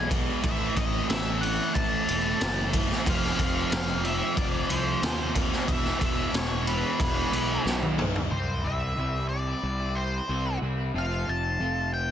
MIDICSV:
0, 0, Header, 1, 9, 480
1, 0, Start_track
1, 0, Tempo, 657174
1, 321, Time_signature, 4, 2, 24, 8
1, 8846, End_track
2, 0, Start_track
2, 0, Title_t, "Lead electric guitar"
2, 0, Program_c, 0, 29
2, 325, Note_on_c, 0, 76, 88
2, 556, Note_off_c, 0, 76, 0
2, 559, Note_on_c, 0, 75, 85
2, 795, Note_off_c, 0, 75, 0
2, 797, Note_on_c, 0, 76, 92
2, 1021, Note_off_c, 0, 76, 0
2, 1030, Note_on_c, 0, 78, 106
2, 1257, Note_off_c, 0, 78, 0
2, 1275, Note_on_c, 0, 81, 101
2, 1966, Note_off_c, 0, 81, 0
2, 2261, Note_on_c, 0, 77, 114
2, 2478, Note_off_c, 0, 77, 0
2, 2486, Note_on_c, 0, 77, 107
2, 2958, Note_off_c, 0, 77, 0
2, 2961, Note_on_c, 0, 76, 106
2, 3185, Note_off_c, 0, 76, 0
2, 3188, Note_on_c, 0, 74, 100
2, 3428, Note_on_c, 0, 72, 89
2, 3438, Note_off_c, 0, 74, 0
2, 3881, Note_off_c, 0, 72, 0
2, 4149, Note_on_c, 0, 76, 117
2, 4373, Note_off_c, 0, 76, 0
2, 4384, Note_on_c, 0, 76, 103
2, 4631, Note_off_c, 0, 76, 0
2, 4634, Note_on_c, 0, 73, 95
2, 4856, Note_off_c, 0, 73, 0
2, 4874, Note_on_c, 0, 71, 83
2, 5563, Note_off_c, 0, 71, 0
2, 6073, Note_on_c, 0, 72, 86
2, 6311, Note_on_c, 0, 76, 94
2, 6320, Note_off_c, 0, 72, 0
2, 6780, Note_off_c, 0, 76, 0
2, 6783, Note_on_c, 0, 74, 96
2, 7270, Note_on_c, 0, 72, 77
2, 7284, Note_off_c, 0, 74, 0
2, 7725, Note_off_c, 0, 72, 0
2, 8022, Note_on_c, 0, 77, 91
2, 8248, Note_on_c, 0, 81, 101
2, 8257, Note_off_c, 0, 77, 0
2, 8715, Note_off_c, 0, 81, 0
2, 8718, Note_on_c, 0, 79, 94
2, 8846, Note_off_c, 0, 79, 0
2, 8846, End_track
3, 0, Start_track
3, 0, Title_t, "Clean electric guitar"
3, 0, Program_c, 1, 27
3, 6067, Note_on_c, 1, 48, 74
3, 6073, Note_on_c, 1, 52, 83
3, 6075, Note_on_c, 1, 55, 81
3, 6080, Note_on_c, 1, 60, 93
3, 6084, Note_on_c, 1, 64, 85
3, 6182, Note_off_c, 1, 64, 0
3, 6191, Note_on_c, 1, 64, 67
3, 6195, Note_off_c, 1, 60, 0
3, 6196, Note_off_c, 1, 55, 0
3, 6198, Note_on_c, 1, 60, 66
3, 6205, Note_on_c, 1, 55, 54
3, 6301, Note_off_c, 1, 52, 0
3, 6309, Note_off_c, 1, 55, 0
3, 6310, Note_on_c, 1, 52, 62
3, 6315, Note_off_c, 1, 64, 0
3, 6318, Note_on_c, 1, 55, 69
3, 6319, Note_off_c, 1, 60, 0
3, 6322, Note_on_c, 1, 60, 71
3, 6323, Note_on_c, 1, 64, 72
3, 6430, Note_off_c, 1, 48, 0
3, 6547, Note_off_c, 1, 52, 0
3, 6550, Note_off_c, 1, 55, 0
3, 6550, Note_on_c, 1, 48, 82
3, 6555, Note_off_c, 1, 64, 0
3, 6556, Note_on_c, 1, 52, 83
3, 6559, Note_on_c, 1, 55, 90
3, 6561, Note_off_c, 1, 60, 0
3, 6564, Note_on_c, 1, 60, 86
3, 6564, Note_on_c, 1, 64, 96
3, 6791, Note_off_c, 1, 52, 0
3, 6795, Note_off_c, 1, 55, 0
3, 6797, Note_off_c, 1, 64, 0
3, 6802, Note_off_c, 1, 60, 0
3, 6917, Note_on_c, 1, 64, 71
3, 6923, Note_on_c, 1, 60, 56
3, 6931, Note_on_c, 1, 55, 55
3, 7032, Note_off_c, 1, 48, 0
3, 7143, Note_off_c, 1, 64, 0
3, 7151, Note_off_c, 1, 60, 0
3, 7152, Note_on_c, 1, 64, 66
3, 7159, Note_off_c, 1, 55, 0
3, 7159, Note_on_c, 1, 60, 64
3, 7168, Note_on_c, 1, 55, 48
3, 7271, Note_off_c, 1, 55, 0
3, 7274, Note_on_c, 1, 52, 62
3, 7277, Note_off_c, 1, 60, 0
3, 7279, Note_off_c, 1, 64, 0
3, 7280, Note_on_c, 1, 55, 66
3, 7286, Note_on_c, 1, 60, 70
3, 7288, Note_on_c, 1, 64, 75
3, 7505, Note_off_c, 1, 52, 0
3, 7507, Note_off_c, 1, 55, 0
3, 7510, Note_on_c, 1, 48, 82
3, 7511, Note_off_c, 1, 60, 0
3, 7514, Note_on_c, 1, 52, 85
3, 7516, Note_on_c, 1, 55, 89
3, 7517, Note_off_c, 1, 64, 0
3, 7519, Note_on_c, 1, 60, 97
3, 7526, Note_on_c, 1, 64, 86
3, 7623, Note_off_c, 1, 64, 0
3, 7629, Note_off_c, 1, 60, 0
3, 7632, Note_on_c, 1, 64, 64
3, 7638, Note_off_c, 1, 55, 0
3, 7638, Note_on_c, 1, 60, 60
3, 7646, Note_on_c, 1, 55, 59
3, 7741, Note_off_c, 1, 52, 0
3, 7749, Note_off_c, 1, 55, 0
3, 7750, Note_on_c, 1, 52, 71
3, 7754, Note_off_c, 1, 60, 0
3, 7757, Note_off_c, 1, 64, 0
3, 7758, Note_on_c, 1, 55, 72
3, 7763, Note_on_c, 1, 60, 75
3, 7766, Note_on_c, 1, 64, 78
3, 7859, Note_off_c, 1, 64, 0
3, 7868, Note_on_c, 1, 64, 69
3, 7870, Note_off_c, 1, 60, 0
3, 7874, Note_off_c, 1, 48, 0
3, 7876, Note_off_c, 1, 55, 0
3, 7879, Note_on_c, 1, 60, 60
3, 7885, Note_on_c, 1, 55, 53
3, 7978, Note_off_c, 1, 64, 0
3, 7979, Note_off_c, 1, 52, 0
3, 7983, Note_off_c, 1, 60, 0
3, 7987, Note_off_c, 1, 55, 0
3, 7992, Note_on_c, 1, 41, 88
3, 7995, Note_on_c, 1, 48, 86
3, 7998, Note_on_c, 1, 53, 85
3, 8000, Note_on_c, 1, 57, 91
3, 8003, Note_on_c, 1, 60, 91
3, 8004, Note_on_c, 1, 65, 87
3, 8103, Note_off_c, 1, 65, 0
3, 8109, Note_off_c, 1, 60, 0
3, 8111, Note_on_c, 1, 65, 72
3, 8114, Note_off_c, 1, 53, 0
3, 8116, Note_off_c, 1, 57, 0
3, 8117, Note_on_c, 1, 60, 70
3, 8119, Note_on_c, 1, 57, 64
3, 8123, Note_on_c, 1, 53, 61
3, 8224, Note_off_c, 1, 53, 0
3, 8233, Note_on_c, 1, 53, 68
3, 8235, Note_off_c, 1, 57, 0
3, 8235, Note_off_c, 1, 60, 0
3, 8237, Note_off_c, 1, 65, 0
3, 8238, Note_on_c, 1, 57, 69
3, 8244, Note_on_c, 1, 60, 70
3, 8246, Note_on_c, 1, 65, 81
3, 8355, Note_off_c, 1, 41, 0
3, 8357, Note_off_c, 1, 48, 0
3, 8465, Note_off_c, 1, 53, 0
3, 8468, Note_on_c, 1, 41, 83
3, 8470, Note_off_c, 1, 60, 0
3, 8472, Note_off_c, 1, 65, 0
3, 8473, Note_on_c, 1, 48, 84
3, 8474, Note_off_c, 1, 57, 0
3, 8474, Note_on_c, 1, 53, 90
3, 8477, Note_on_c, 1, 57, 88
3, 8478, Note_on_c, 1, 60, 90
3, 8481, Note_on_c, 1, 65, 101
3, 8705, Note_off_c, 1, 53, 0
3, 8709, Note_off_c, 1, 60, 0
3, 8711, Note_off_c, 1, 65, 0
3, 8714, Note_off_c, 1, 57, 0
3, 8846, Note_off_c, 1, 41, 0
3, 8846, Note_off_c, 1, 48, 0
3, 8846, End_track
4, 0, Start_track
4, 0, Title_t, "Distorted electric guitar"
4, 0, Program_c, 2, 30
4, 0, Note_on_c, 2, 52, 77
4, 0, Note_on_c, 2, 56, 83
4, 0, Note_on_c, 2, 59, 75
4, 0, Note_on_c, 2, 64, 85
4, 301, Note_off_c, 2, 52, 0
4, 306, Note_off_c, 2, 56, 0
4, 307, Note_off_c, 2, 59, 0
4, 310, Note_off_c, 2, 64, 0
4, 315, Note_on_c, 2, 45, 87
4, 320, Note_on_c, 2, 52, 90
4, 323, Note_on_c, 2, 57, 91
4, 327, Note_on_c, 2, 60, 90
4, 330, Note_on_c, 2, 64, 101
4, 1501, Note_off_c, 2, 45, 0
4, 1503, Note_off_c, 2, 52, 0
4, 1504, Note_off_c, 2, 64, 0
4, 1505, Note_off_c, 2, 57, 0
4, 1507, Note_off_c, 2, 60, 0
4, 1512, Note_on_c, 2, 64, 89
4, 1518, Note_on_c, 2, 60, 83
4, 1522, Note_on_c, 2, 57, 86
4, 1526, Note_on_c, 2, 52, 70
4, 1529, Note_on_c, 2, 45, 70
4, 1740, Note_off_c, 2, 64, 0
4, 1743, Note_off_c, 2, 60, 0
4, 1745, Note_off_c, 2, 57, 0
4, 1747, Note_off_c, 2, 52, 0
4, 1748, Note_off_c, 2, 45, 0
4, 1757, Note_on_c, 2, 45, 75
4, 1761, Note_on_c, 2, 52, 79
4, 1764, Note_on_c, 2, 57, 82
4, 1768, Note_on_c, 2, 60, 80
4, 1772, Note_on_c, 2, 64, 85
4, 2222, Note_off_c, 2, 45, 0
4, 2224, Note_off_c, 2, 52, 0
4, 2225, Note_off_c, 2, 57, 0
4, 2227, Note_off_c, 2, 60, 0
4, 2229, Note_off_c, 2, 64, 0
4, 2231, Note_on_c, 2, 53, 95
4, 2238, Note_on_c, 2, 57, 91
4, 2242, Note_on_c, 2, 60, 105
4, 2245, Note_on_c, 2, 65, 103
4, 3416, Note_off_c, 2, 65, 0
4, 3417, Note_off_c, 2, 53, 0
4, 3420, Note_off_c, 2, 57, 0
4, 3422, Note_off_c, 2, 60, 0
4, 3424, Note_on_c, 2, 65, 84
4, 3431, Note_on_c, 2, 60, 75
4, 3435, Note_on_c, 2, 57, 78
4, 3441, Note_on_c, 2, 53, 76
4, 3654, Note_off_c, 2, 65, 0
4, 3655, Note_off_c, 2, 53, 0
4, 3657, Note_off_c, 2, 60, 0
4, 3659, Note_off_c, 2, 57, 0
4, 3664, Note_on_c, 2, 53, 73
4, 3672, Note_on_c, 2, 57, 76
4, 3674, Note_on_c, 2, 60, 81
4, 3678, Note_on_c, 2, 65, 82
4, 4133, Note_off_c, 2, 53, 0
4, 4137, Note_off_c, 2, 57, 0
4, 4138, Note_off_c, 2, 60, 0
4, 4140, Note_off_c, 2, 65, 0
4, 4140, Note_on_c, 2, 52, 103
4, 4146, Note_on_c, 2, 56, 102
4, 4151, Note_on_c, 2, 59, 100
4, 4158, Note_on_c, 2, 64, 111
4, 5331, Note_off_c, 2, 52, 0
4, 5333, Note_off_c, 2, 64, 0
4, 5334, Note_off_c, 2, 56, 0
4, 5336, Note_off_c, 2, 59, 0
4, 5341, Note_on_c, 2, 64, 91
4, 5347, Note_on_c, 2, 59, 84
4, 5354, Note_on_c, 2, 56, 81
4, 5358, Note_on_c, 2, 52, 66
4, 5572, Note_off_c, 2, 64, 0
4, 5575, Note_off_c, 2, 59, 0
4, 5576, Note_off_c, 2, 52, 0
4, 5578, Note_off_c, 2, 56, 0
4, 5585, Note_on_c, 2, 52, 75
4, 5592, Note_on_c, 2, 56, 83
4, 5597, Note_on_c, 2, 59, 90
4, 5601, Note_on_c, 2, 64, 82
4, 6054, Note_off_c, 2, 52, 0
4, 6058, Note_off_c, 2, 56, 0
4, 6060, Note_off_c, 2, 59, 0
4, 6062, Note_off_c, 2, 64, 0
4, 8846, End_track
5, 0, Start_track
5, 0, Title_t, "Distorted electric guitar"
5, 0, Program_c, 3, 30
5, 0, Note_on_c, 3, 40, 80
5, 0, Note_on_c, 3, 47, 82
5, 0, Note_on_c, 3, 52, 85
5, 303, Note_off_c, 3, 40, 0
5, 307, Note_off_c, 3, 47, 0
5, 312, Note_off_c, 3, 52, 0
5, 315, Note_on_c, 3, 45, 99
5, 323, Note_on_c, 3, 52, 96
5, 333, Note_on_c, 3, 57, 109
5, 1022, Note_off_c, 3, 45, 0
5, 1026, Note_off_c, 3, 52, 0
5, 1032, Note_off_c, 3, 57, 0
5, 1035, Note_on_c, 3, 57, 96
5, 1044, Note_on_c, 3, 52, 83
5, 1053, Note_on_c, 3, 45, 77
5, 1741, Note_off_c, 3, 57, 0
5, 1742, Note_off_c, 3, 45, 0
5, 1746, Note_off_c, 3, 52, 0
5, 1751, Note_on_c, 3, 45, 78
5, 1759, Note_on_c, 3, 52, 80
5, 1767, Note_on_c, 3, 57, 86
5, 2219, Note_off_c, 3, 45, 0
5, 2223, Note_off_c, 3, 52, 0
5, 2227, Note_off_c, 3, 57, 0
5, 2235, Note_on_c, 3, 41, 96
5, 2243, Note_on_c, 3, 48, 106
5, 2250, Note_on_c, 3, 53, 97
5, 2939, Note_off_c, 3, 41, 0
5, 2940, Note_off_c, 3, 53, 0
5, 2944, Note_off_c, 3, 48, 0
5, 2949, Note_on_c, 3, 53, 90
5, 2960, Note_on_c, 3, 48, 81
5, 2967, Note_on_c, 3, 41, 76
5, 3656, Note_off_c, 3, 53, 0
5, 3657, Note_off_c, 3, 41, 0
5, 3661, Note_off_c, 3, 48, 0
5, 3665, Note_on_c, 3, 41, 77
5, 3675, Note_on_c, 3, 48, 76
5, 3684, Note_on_c, 3, 53, 84
5, 4134, Note_off_c, 3, 41, 0
5, 4139, Note_off_c, 3, 48, 0
5, 4141, Note_on_c, 3, 40, 91
5, 4143, Note_off_c, 3, 53, 0
5, 4150, Note_on_c, 3, 47, 106
5, 4156, Note_on_c, 3, 52, 103
5, 4851, Note_off_c, 3, 40, 0
5, 4852, Note_off_c, 3, 52, 0
5, 4856, Note_off_c, 3, 47, 0
5, 4861, Note_on_c, 3, 52, 92
5, 4870, Note_on_c, 3, 47, 83
5, 4877, Note_on_c, 3, 40, 72
5, 5572, Note_off_c, 3, 52, 0
5, 5576, Note_off_c, 3, 40, 0
5, 5576, Note_off_c, 3, 47, 0
5, 5585, Note_on_c, 3, 40, 78
5, 5595, Note_on_c, 3, 47, 86
5, 5600, Note_on_c, 3, 52, 90
5, 6054, Note_off_c, 3, 40, 0
5, 6059, Note_off_c, 3, 47, 0
5, 6062, Note_off_c, 3, 52, 0
5, 8846, End_track
6, 0, Start_track
6, 0, Title_t, "Overdriven electric guitar"
6, 0, Program_c, 4, 29
6, 70, Note_on_c, 4, 52, 87
6, 83, Note_on_c, 4, 47, 84
6, 92, Note_on_c, 4, 40, 75
6, 300, Note_off_c, 4, 52, 0
6, 307, Note_off_c, 4, 47, 0
6, 312, Note_off_c, 4, 40, 0
6, 312, Note_on_c, 4, 45, 97
6, 327, Note_on_c, 4, 52, 101
6, 336, Note_on_c, 4, 57, 111
6, 1978, Note_off_c, 4, 45, 0
6, 1986, Note_off_c, 4, 52, 0
6, 1986, Note_off_c, 4, 57, 0
6, 1995, Note_on_c, 4, 57, 91
6, 2009, Note_on_c, 4, 52, 86
6, 2017, Note_on_c, 4, 45, 78
6, 2221, Note_off_c, 4, 57, 0
6, 2228, Note_off_c, 4, 52, 0
6, 2232, Note_off_c, 4, 45, 0
6, 2233, Note_on_c, 4, 41, 99
6, 2247, Note_on_c, 4, 48, 100
6, 2258, Note_on_c, 4, 53, 110
6, 3896, Note_off_c, 4, 53, 0
6, 3897, Note_off_c, 4, 41, 0
6, 3904, Note_off_c, 4, 48, 0
6, 3905, Note_on_c, 4, 53, 91
6, 3920, Note_on_c, 4, 48, 88
6, 3929, Note_on_c, 4, 41, 75
6, 4134, Note_off_c, 4, 53, 0
6, 4141, Note_off_c, 4, 48, 0
6, 4145, Note_off_c, 4, 41, 0
6, 4148, Note_on_c, 4, 40, 99
6, 4159, Note_on_c, 4, 47, 100
6, 4170, Note_on_c, 4, 52, 110
6, 5815, Note_off_c, 4, 40, 0
6, 5820, Note_off_c, 4, 47, 0
6, 5821, Note_off_c, 4, 52, 0
6, 5829, Note_on_c, 4, 52, 83
6, 5840, Note_on_c, 4, 47, 81
6, 5849, Note_on_c, 4, 40, 69
6, 6056, Note_off_c, 4, 52, 0
6, 6062, Note_off_c, 4, 47, 0
6, 6066, Note_off_c, 4, 40, 0
6, 8846, End_track
7, 0, Start_track
7, 0, Title_t, "Picked electric bass"
7, 0, Program_c, 5, 34
7, 0, Note_on_c, 5, 35, 89
7, 196, Note_off_c, 5, 35, 0
7, 321, Note_on_c, 5, 33, 98
7, 499, Note_off_c, 5, 33, 0
7, 558, Note_on_c, 5, 33, 82
7, 737, Note_off_c, 5, 33, 0
7, 801, Note_on_c, 5, 33, 101
7, 1156, Note_off_c, 5, 33, 0
7, 1282, Note_on_c, 5, 33, 99
7, 1458, Note_off_c, 5, 33, 0
7, 1521, Note_on_c, 5, 28, 87
7, 1698, Note_off_c, 5, 28, 0
7, 1761, Note_on_c, 5, 30, 99
7, 2115, Note_off_c, 5, 30, 0
7, 2238, Note_on_c, 5, 29, 92
7, 2415, Note_off_c, 5, 29, 0
7, 2474, Note_on_c, 5, 29, 89
7, 2652, Note_off_c, 5, 29, 0
7, 2716, Note_on_c, 5, 29, 95
7, 3071, Note_off_c, 5, 29, 0
7, 3191, Note_on_c, 5, 29, 95
7, 3370, Note_off_c, 5, 29, 0
7, 3432, Note_on_c, 5, 36, 86
7, 3610, Note_off_c, 5, 36, 0
7, 3667, Note_on_c, 5, 39, 98
7, 4025, Note_off_c, 5, 39, 0
7, 4151, Note_on_c, 5, 28, 96
7, 4329, Note_off_c, 5, 28, 0
7, 4389, Note_on_c, 5, 28, 84
7, 4568, Note_off_c, 5, 28, 0
7, 4625, Note_on_c, 5, 28, 96
7, 4984, Note_off_c, 5, 28, 0
7, 5111, Note_on_c, 5, 28, 97
7, 5289, Note_off_c, 5, 28, 0
7, 5347, Note_on_c, 5, 35, 84
7, 5527, Note_off_c, 5, 35, 0
7, 5589, Note_on_c, 5, 35, 94
7, 5947, Note_off_c, 5, 35, 0
7, 6074, Note_on_c, 5, 36, 87
7, 6278, Note_off_c, 5, 36, 0
7, 6315, Note_on_c, 5, 36, 69
7, 6519, Note_off_c, 5, 36, 0
7, 6552, Note_on_c, 5, 36, 83
7, 6963, Note_off_c, 5, 36, 0
7, 7034, Note_on_c, 5, 36, 83
7, 7445, Note_off_c, 5, 36, 0
7, 7515, Note_on_c, 5, 36, 80
7, 7720, Note_off_c, 5, 36, 0
7, 7755, Note_on_c, 5, 36, 83
7, 7960, Note_off_c, 5, 36, 0
7, 7993, Note_on_c, 5, 29, 83
7, 8200, Note_off_c, 5, 29, 0
7, 8237, Note_on_c, 5, 29, 69
7, 8443, Note_off_c, 5, 29, 0
7, 8474, Note_on_c, 5, 29, 83
7, 8846, Note_off_c, 5, 29, 0
7, 8846, End_track
8, 0, Start_track
8, 0, Title_t, "Muted clean electric guitar strokes"
8, 6800, Note_on_c, 9, 29, 43
8, 6873, Note_off_c, 9, 29, 0
8, 8714, Note_on_c, 9, 29, 43
8, 8787, Note_off_c, 9, 29, 0
8, 8846, End_track
9, 0, Start_track
9, 0, Title_t, "Drums"
9, 80, Note_on_c, 9, 36, 98
9, 81, Note_on_c, 9, 51, 81
9, 153, Note_off_c, 9, 36, 0
9, 154, Note_off_c, 9, 51, 0
9, 319, Note_on_c, 9, 36, 120
9, 320, Note_on_c, 9, 51, 104
9, 392, Note_off_c, 9, 36, 0
9, 393, Note_off_c, 9, 51, 0
9, 559, Note_on_c, 9, 36, 88
9, 559, Note_on_c, 9, 51, 76
9, 632, Note_off_c, 9, 36, 0
9, 632, Note_off_c, 9, 51, 0
9, 800, Note_on_c, 9, 51, 100
9, 806, Note_on_c, 9, 38, 117
9, 873, Note_off_c, 9, 51, 0
9, 879, Note_off_c, 9, 38, 0
9, 1043, Note_on_c, 9, 51, 76
9, 1116, Note_off_c, 9, 51, 0
9, 1280, Note_on_c, 9, 36, 112
9, 1284, Note_on_c, 9, 51, 112
9, 1353, Note_off_c, 9, 36, 0
9, 1357, Note_off_c, 9, 51, 0
9, 1522, Note_on_c, 9, 51, 87
9, 1595, Note_off_c, 9, 51, 0
9, 1759, Note_on_c, 9, 51, 106
9, 1765, Note_on_c, 9, 38, 114
9, 1832, Note_off_c, 9, 51, 0
9, 1838, Note_off_c, 9, 38, 0
9, 1996, Note_on_c, 9, 51, 88
9, 1997, Note_on_c, 9, 36, 94
9, 2069, Note_off_c, 9, 51, 0
9, 2070, Note_off_c, 9, 36, 0
9, 2128, Note_on_c, 9, 38, 36
9, 2201, Note_off_c, 9, 38, 0
9, 2238, Note_on_c, 9, 36, 123
9, 2241, Note_on_c, 9, 51, 120
9, 2311, Note_off_c, 9, 36, 0
9, 2314, Note_off_c, 9, 51, 0
9, 2370, Note_on_c, 9, 38, 34
9, 2443, Note_off_c, 9, 38, 0
9, 2476, Note_on_c, 9, 36, 82
9, 2478, Note_on_c, 9, 51, 79
9, 2549, Note_off_c, 9, 36, 0
9, 2551, Note_off_c, 9, 51, 0
9, 2716, Note_on_c, 9, 51, 107
9, 2722, Note_on_c, 9, 38, 115
9, 2789, Note_off_c, 9, 51, 0
9, 2795, Note_off_c, 9, 38, 0
9, 2955, Note_on_c, 9, 51, 75
9, 3028, Note_off_c, 9, 51, 0
9, 3193, Note_on_c, 9, 36, 112
9, 3195, Note_on_c, 9, 51, 105
9, 3266, Note_off_c, 9, 36, 0
9, 3268, Note_off_c, 9, 51, 0
9, 3432, Note_on_c, 9, 51, 77
9, 3505, Note_off_c, 9, 51, 0
9, 3673, Note_on_c, 9, 51, 100
9, 3679, Note_on_c, 9, 38, 112
9, 3746, Note_off_c, 9, 51, 0
9, 3752, Note_off_c, 9, 38, 0
9, 3911, Note_on_c, 9, 36, 92
9, 3911, Note_on_c, 9, 51, 83
9, 3984, Note_off_c, 9, 36, 0
9, 3984, Note_off_c, 9, 51, 0
9, 4038, Note_on_c, 9, 38, 35
9, 4111, Note_off_c, 9, 38, 0
9, 4150, Note_on_c, 9, 36, 116
9, 4152, Note_on_c, 9, 51, 102
9, 4223, Note_off_c, 9, 36, 0
9, 4225, Note_off_c, 9, 51, 0
9, 4276, Note_on_c, 9, 38, 35
9, 4349, Note_off_c, 9, 38, 0
9, 4391, Note_on_c, 9, 36, 88
9, 4392, Note_on_c, 9, 51, 79
9, 4464, Note_off_c, 9, 36, 0
9, 4465, Note_off_c, 9, 51, 0
9, 4631, Note_on_c, 9, 51, 99
9, 4637, Note_on_c, 9, 38, 114
9, 4704, Note_off_c, 9, 51, 0
9, 4710, Note_off_c, 9, 38, 0
9, 4872, Note_on_c, 9, 51, 79
9, 4946, Note_off_c, 9, 51, 0
9, 5111, Note_on_c, 9, 36, 123
9, 5114, Note_on_c, 9, 51, 116
9, 5184, Note_off_c, 9, 36, 0
9, 5187, Note_off_c, 9, 51, 0
9, 5355, Note_on_c, 9, 51, 81
9, 5428, Note_off_c, 9, 51, 0
9, 5598, Note_on_c, 9, 38, 65
9, 5671, Note_off_c, 9, 38, 0
9, 5715, Note_on_c, 9, 48, 71
9, 5788, Note_off_c, 9, 48, 0
9, 5832, Note_on_c, 9, 45, 107
9, 5905, Note_off_c, 9, 45, 0
9, 5957, Note_on_c, 9, 43, 91
9, 6030, Note_off_c, 9, 43, 0
9, 8846, End_track
0, 0, End_of_file